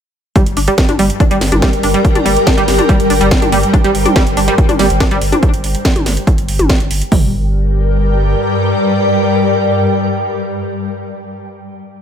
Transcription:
0.36 synth drone G2 G3, synth arpeggio sound G3, ambient pad G4, kick, closed hi-hat
0.46 sub bass G1, closed hi-hat
0.57 sub bass G1, synth arpeggio sound D4, open hi-hat
0.66 synth arpeggio sound G3, ambient pad A#4, closed hi-hat
0.75 ambient pad G5, kick, snare, closed hi-hat
0.89 sub bass G1, synth arpeggio sound D4, ambient pad D5, closed hi-hat, mid tom
0.99 sub bass G1, synth arpeggio sound G3, open hi-hat
1.10 closed hi-hat
1.20 synth arpeggio sound D4, kick, closed hi-hat
1.31 sub bass G1, synth arpeggio sound G3, closed hi-hat
1.41 sub bass G1, snare, open hi-hat
1.52 sub bass G1, synth arpeggio sound D4, closed hi-hat, mid tom
1.62 synth arpeggio sound G3, kick, snare, closed hi-hat
1.73 sub bass G1, closed hi-hat
1.83 sub bass G1, synth arpeggio sound D4, open hi-hat
1.94 synth arpeggio sound G3, closed hi-hat
2.05 kick, closed hi-hat
2.15 sub bass G1, synth arpeggio sound D4, closed hi-hat, mid tom
2.25 sub bass G1, synth arpeggio sound G3, open hi-hat
2.37 closed hi-hat
2.47 synth arpeggio sound D4, kick, snare, closed hi-hat
2.57 sub bass G1, synth arpeggio sound G3, closed hi-hat
2.68 sub bass G1, snare, open hi-hat
2.79 synth arpeggio sound D4, closed hi-hat, mid tom
2.89 synth arpeggio sound G3, kick, closed hi-hat
3.00 sub bass G1, ambient pad C5, closed hi-hat
3.10 sub bass G1, synth arpeggio sound D4, open hi-hat
3.21 sub bass G1, synth arpeggio sound G3, closed hi-hat
3.31 kick, snare, closed hi-hat
3.42 sub bass G1, synth arpeggio sound D4, closed hi-hat, mid tom
3.52 sub bass G1, synth arpeggio sound G3, open hi-hat
3.63 closed hi-hat
3.73 synth arpeggio sound D4, kick, closed hi-hat
3.84 sub bass G1, synth arpeggio sound G3, closed hi-hat
3.95 sub bass G1, open hi-hat
4.05 synth arpeggio sound D4, closed hi-hat, mid tom
4.16 synth arpeggio sound G3, kick, snare, closed hi-hat
4.27 sub bass G1, closed hi-hat
4.37 sub bass G1, synth arpeggio sound D4, open hi-hat
4.48 synth arpeggio sound G3, closed hi-hat
4.58 kick, closed hi-hat
4.69 sub bass G1, synth arpeggio sound D4, closed hi-hat, mid tom
4.79 sub bass G1, synth arpeggio sound G3, snare, open hi-hat
4.90 sub bass G1, closed hi-hat
5.00 synth arpeggio sound D4, kick, snare, closed hi-hat
5.11 sub bass G1, synth arpeggio sound G3, closed hi-hat
5.21 sub bass G1, open hi-hat
5.32 synth arpeggio sound D4, closed hi-hat, mid tom
5.43 kick, closed hi-hat
5.53 sub bass G1, closed hi-hat
5.64 sub bass G1, open hi-hat
5.75 closed hi-hat
5.85 kick, snare, closed hi-hat
5.96 sub bass G1, closed hi-hat, mid tom
6.06 sub bass G1, snare, open hi-hat
6.17 closed hi-hat
6.27 kick, closed hi-hat
6.38 sub bass G1, closed hi-hat
6.48 sub bass G1, open hi-hat
6.59 sub bass G1, closed hi-hat, mid tom
6.69 kick, snare, closed hi-hat
6.80 sub bass G1, closed hi-hat
6.91 sub bass G1, open hi-hat
7.02 closed hi-hat
7.12 sub bass G1, synth drone G2 G3, synth arpeggio sound G3, ambient pad G4, kick, floor tom, open hi-hat
7.19 ambient pad A#4
7.25 ambient pad D5
7.31 ambient pad G5

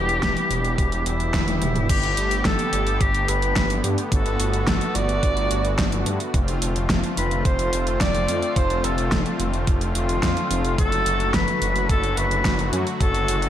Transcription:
Already playing: detuned saw bass E1, analog synth pad E3 G3 B3 G4, tenor saxophone G4
0.09 closed hi-hat
0.23 detuned saw bass E1, kick, snare, closed hi-hat
0.37 closed hi-hat
0.51 detuned saw bass E1, closed hi-hat
0.65 closed hi-hat
0.78 detuned saw bass E1, kick, closed hi-hat
0.92 closed hi-hat
1.06 detuned saw bass E1, tenor saxophone E4, closed hi-hat
1.20 closed hi-hat
1.34 detuned saw bass E1, kick, snare, closed hi-hat, high tom
1.48 closed hi-hat, high tom
1.62 detuned saw bass E1, closed hi-hat, mid tom
1.76 closed hi-hat, mid tom
1.89 detuned saw bass G1, analog synth pad D3 A3 B3 G4, tenor saxophone G4, kick, closed hi-hat, crash
2.03 closed hi-hat
2.17 detuned saw bass G1, closed hi-hat
2.31 closed hi-hat
2.45 detuned saw bass G1, tenor saxophone A4, kick, snare, closed hi-hat
2.59 closed hi-hat
2.73 detuned saw bass G1, closed hi-hat
2.87 closed hi-hat
3.01 detuned saw bass G1, tenor saxophone G4, kick, closed hi-hat
3.15 closed hi-hat
3.28 detuned saw bass G1, tenor saxophone B4, closed hi-hat
3.42 closed hi-hat
3.56 detuned saw bass G1, kick, snare, closed hi-hat
3.70 closed hi-hat
3.84 detuned saw bass G2, closed hi-hat
3.98 closed hi-hat
4.12 detuned saw bass G1, analog synth pad F#4, tenor saxophone A4, kick, closed hi-hat
4.26 closed hi-hat
4.40 detuned saw bass G1, closed hi-hat
4.54 closed hi-hat
4.67 detuned saw bass G1, tenor saxophone A4, kick, snare, closed hi-hat
4.81 closed hi-hat
4.95 detuned saw bass G1, tenor saxophone D5, closed hi-hat
5.09 closed hi-hat
5.23 detuned saw bass G1, kick, closed hi-hat
5.37 closed hi-hat
5.51 detuned saw bass G1, closed hi-hat
5.65 closed hi-hat
5.78 detuned saw bass G1, kick, snare, closed hi-hat
5.92 closed hi-hat
6.06 detuned saw bass G2, closed hi-hat
6.20 closed hi-hat
6.34 detuned saw bass F1, analog synth pad D3 C4 F4, kick, closed hi-hat
6.48 closed hi-hat
6.62 detuned saw bass F1, closed hi-hat
6.76 closed hi-hat
6.90 detuned saw bass F1, kick, snare, closed hi-hat
7.04 closed hi-hat
7.17 detuned saw bass F1, tenor saxophone B4, closed hi-hat
7.31 closed hi-hat
7.45 detuned saw bass F1, tenor saxophone C5, kick, closed hi-hat
7.59 closed hi-hat
7.73 detuned saw bass F1, closed hi-hat
7.87 closed hi-hat
8.01 detuned saw bass F1, tenor saxophone D5, kick, snare, closed hi-hat
8.15 closed hi-hat
8.28 detuned saw bass F2, closed hi-hat
8.42 closed hi-hat
8.56 detuned saw bass F1, tenor saxophone C5, kick, closed hi-hat
8.70 closed hi-hat
8.84 detuned saw bass F1, tenor saxophone A4, closed hi-hat
8.98 closed hi-hat
9.12 detuned saw bass F1, kick, snare, closed hi-hat
9.26 closed hi-hat
9.40 detuned saw bass F1, closed hi-hat
9.54 closed hi-hat
9.67 detuned saw bass F1, kick, closed hi-hat
9.81 closed hi-hat
9.95 detuned saw bass F1, tenor saxophone F4, closed hi-hat
10.09 closed hi-hat
10.23 detuned saw bass F2, kick, snare, closed hi-hat
10.37 closed hi-hat
10.51 detuned saw bass F1, closed hi-hat
10.65 closed hi-hat
10.78 detuned saw bass F#1, analog synth pad F#3 F#4, tenor saxophone A4, kick, closed hi-hat
10.92 closed hi-hat
11.06 detuned saw bass F#1, closed hi-hat
11.20 closed hi-hat
11.34 detuned saw bass F#1, tenor saxophone B4, kick, snare, closed hi-hat
11.48 closed hi-hat
11.62 detuned saw bass F#1, closed hi-hat
11.76 closed hi-hat
11.89 detuned saw bass F#1, tenor saxophone A4, kick, closed hi-hat
12.03 closed hi-hat
12.17 detuned saw bass F#1, tenor saxophone B4, closed hi-hat
12.31 closed hi-hat
12.45 detuned saw bass F#1, kick, snare, closed hi-hat
12.59 closed hi-hat
12.73 detuned saw bass F#2, closed hi-hat
12.87 closed hi-hat
13.00 detuned saw bass F#1, tenor saxophone A4, kick, closed hi-hat
13.14 closed hi-hat
13.28 detuned saw bass F#1, closed hi-hat
13.42 closed hi-hat

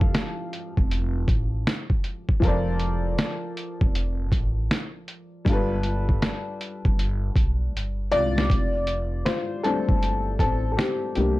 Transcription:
Already playing: upright bass F1, upright piano F3 F4 G4 A4 F5
0.01 kick
0.14 finger snap, snare, closed hi-hat
0.53 closed hi-hat
0.77 upright bass F1, kick
0.91 closed hi-hat
1.28 upright bass A1, kick, closed hi-hat
1.67 finger snap, snare, closed hi-hat
1.90 kick
2.04 closed hi-hat
2.29 kick
2.40 upright bass F1, upright piano F3 F4 A4, kick, closed hi-hat
2.45 upright piano A#4 C5 D5
2.79 closed hi-hat
3.18 finger snap, snare, closed hi-hat
3.57 closed hi-hat
3.81 upright bass F1, kick
3.95 closed hi-hat
4.32 upright bass A1, kick, closed hi-hat
4.71 finger snap, snare, closed hi-hat
5.08 closed hi-hat
5.45 upright bass G1, upright piano G3 D4 F4, kick, closed hi-hat
5.51 upright piano A4 B4
5.83 closed hi-hat
6.09 kick
6.22 finger snap, snare, closed hi-hat
6.61 closed hi-hat
6.85 upright bass G1, kick
6.99 closed hi-hat
7.36 upright bass B1, kick, closed hi-hat
7.75 upright bass G1, closed hi-hat
8.12 upright bass C2, upright piano F4 D5, closed hi-hat
8.38 snare
8.50 upright bass F1, kick, closed hi-hat
8.87 closed hi-hat
9.25 upright piano F4 C5, finger snap, snare, closed hi-hat
9.63 upright piano G3 A3 C4 D4 A4, closed hi-hat
9.89 upright bass G1, kick
10.03 closed hi-hat
10.39 upright bass A1, upright piano C4 A4, kick, closed hi-hat
10.72 upright piano A4
10.77 upright piano C4 G4, finger snap, snare, closed hi-hat
11.15 upright bass C2, upright piano G3 A3 A#3 D4 G4, closed hi-hat

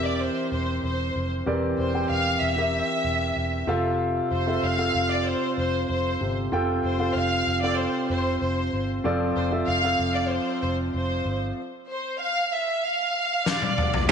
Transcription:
Already playing: picked electric bass E1, grand piano E3 C4 G4 A#4 E5
0.04 violin section D5
0.20 violin section C5
0.52 picked electric bass E1, violin section C5
0.83 picked electric bass E1, violin section C5
1.16 picked electric bass F1
1.46 picked electric bass E1, grand piano E3 C4 G4 A#4 D5
1.78 picked electric bass E1, violin section C5
1.94 grand piano C4 G4 A#4 G5
2.10 picked electric bass E1, violin section F5
2.41 picked electric bass E1, violin section E5
2.57 grand piano C4 G4 A#4 E5
3.04 picked electric bass E1
3.36 picked electric bass E1
3.67 picked electric bass F1, grand piano C3 C4 F4 A4 F5
4.31 picked electric bass F1, violin section C5
4.46 grand piano C4 F4 A4 E5
4.63 picked electric bass F1, violin section F5
4.78 grand piano C4 F4 A4 F5
4.95 picked electric bass F1
5.11 violin section D5
5.27 violin section C5
5.58 picked electric bass F1, violin section C5
5.89 picked electric bass F1, violin section C5
6.21 picked electric bass G1, grand piano C3
6.52 picked electric bass F1, grand piano C4 F4 A4 G5
6.84 picked electric bass F1, violin section C5
6.99 grand piano C4 F4 A4 F5
7.15 picked electric bass F1, violin section F5
7.47 picked electric bass F1
7.62 grand piano C4 F4 A4 F5, violin section D5
7.77 violin section C5
8.09 picked electric bass F1, violin section C5
8.41 picked electric bass F1, violin section C5
8.73 picked electric bass G1
9.04 picked electric bass F1, grand piano F3 C4 F4 A4 D5
9.36 picked electric bass F1, violin section C5
9.51 grand piano C4 F4 A4 E5
9.68 picked electric bass F1, violin section F5
9.83 grand piano C4 F4 A4 F5
9.99 picked electric bass F1
10.15 violin section D5
10.30 violin section C5
10.62 picked electric bass F1, violin section C5
10.94 picked electric bass F1, violin section C5
11.25 picked electric bass G1
11.91 violin section C5
12.21 violin section F5
12.52 violin section E5
12.84 violin section F5
13.46 violin section D5, snare
13.62 high tom
13.78 mid tom
13.94 floor tom

